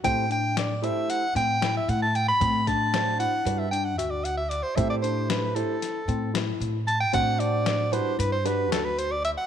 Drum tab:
HH |xxxxxxxxx|xxxxxxxxx|xxxxxxxxx|xxxxxxxxx|
SD |--o--oo--|-oo------|--o-o-o--|--o--oo--|
BD |o--------|oo-------|o--------|o--------|